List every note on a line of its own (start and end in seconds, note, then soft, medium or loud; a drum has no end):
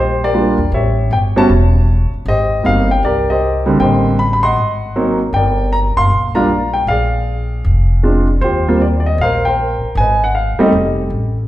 0.00 0.54 A#1 medium
0.00 0.22 G4 medium
0.00 0.22 C5 medium
0.24 0.70 G4 medium
0.24 0.70 A#4 medium
0.24 0.71 D5 medium
0.34 0.56 G3 medium
0.34 0.56 A#3 medium
0.34 0.56 D4 medium
0.34 0.56 F4 medium
0.58 0.71 E2 medium
0.72 1.08 A1 medium
0.72 1.46 G4 medium
0.72 1.35 C#5 medium
0.72 1.09 E5 medium
1.11 1.46 G1 medium
1.11 1.18 G5 medium
1.36 1.48 G3 medium
1.36 1.48 B3 medium
1.36 1.48 C#4 medium
1.36 1.48 F#4 medium
1.36 2.09 C#5 medium
1.36 2.09 E5 medium
1.36 2.10 A5 medium
1.49 2.09 E1 medium
2.14 muted upright bass stroke soft
2.26 2.62 G#1 medium
2.26 3.01 G4 medium
2.26 3.00 C5 medium
2.26 2.63 D#5 medium
2.63 3.00 G1 medium
2.63 2.86 G3 medium
2.63 2.87 A#3 soft
2.63 2.87 C4 medium
2.63 2.87 D#4 medium
2.63 2.91 F5 medium
2.91 3.04 G5 medium
3.03 3.76 C2 medium
3.03 3.29 G4 medium
3.03 3.77 A#4 medium
3.03 3.30 D5 medium
3.30 3.78 G4 medium
3.30 3.78 C5 medium
3.30 3.80 D#5 medium
3.66 4.16 D3 medium
3.66 4.16 G3 medium
3.66 4.16 A#3 medium
3.66 4.16 C4 medium
3.79 4.53 A1 medium
3.79 4.54 C5 medium
3.79 4.43 D#5 medium
3.79 4.16 G5 medium
4.19 4.32 B5 medium
4.33 4.43 B5 medium
4.43 5.17 D#5 medium
4.43 5.17 F#5 medium
4.43 5.16 C6 medium
4.56 5.30 G#1 medium
4.96 5.18 F#3 medium
4.96 5.18 A#3 medium
4.96 5.18 C4 medium
4.96 5.18 D#4 medium
5.33 5.93 G1 medium
5.33 6.08 A#4 medium
5.33 6.08 D5 medium
5.33 5.74 G5 medium
5.73 5.78 A#5 medium
5.96 6.09 F#1 medium
5.96 6.35 F5 medium
5.96 6.33 C6 loud
6.10 6.84 A#1 medium
6.35 6.48 G3 medium
6.35 6.48 A#3 medium
6.35 6.48 D4 medium
6.35 6.48 F4 medium
6.35 6.85 D5 medium
6.35 6.85 F5 medium
6.35 6.71 A#5 medium
6.74 6.88 G5 medium
6.87 7.61 A#1 medium
6.87 8.26 G#4 medium
6.87 8.26 D5 medium
6.87 8.25 F5 medium
7.64 8.38 F1 medium
8.03 8.26 G#3 medium
8.03 8.26 C4 medium
8.03 8.26 D4 medium
8.03 8.26 F4 medium
8.41 9.15 D#2 medium
8.41 8.67 F4 medium
8.41 9.16 G4 medium
8.41 8.75 C5 medium
8.68 8.80 G3 medium
8.68 8.80 A#3 medium
8.68 8.80 C4 medium
8.68 8.80 F4 medium
8.77 8.81 C5 medium
8.82 8.87 D5 medium
9.00 9.06 D5 medium
9.06 9.20 D#5 medium
9.18 9.78 A#1 medium
9.18 9.46 F5 medium
9.23 9.46 A#4 medium
9.23 9.46 C5 medium
9.45 9.95 A#4 medium
9.45 9.95 C5 medium
9.45 9.98 G5 medium
9.82 muted upright bass stroke soft
9.95 10.55 G#1 medium
9.95 10.23 G#5 medium
10.00 10.71 B4 medium
10.00 10.59 D#5 medium
10.24 10.37 F#5 medium
10.35 10.61 F5 medium
10.58 10.72 G3 medium
10.58 10.72 A3 medium
10.58 10.72 C4 medium
10.58 10.72 D#4 medium
10.58 11.09 D#5 medium
10.58 muted upright bass stroke soft
10.62 11.34 G4 medium
10.62 11.34 A4 medium
10.72 11.09 F1 medium
11.10 11.47 A1 medium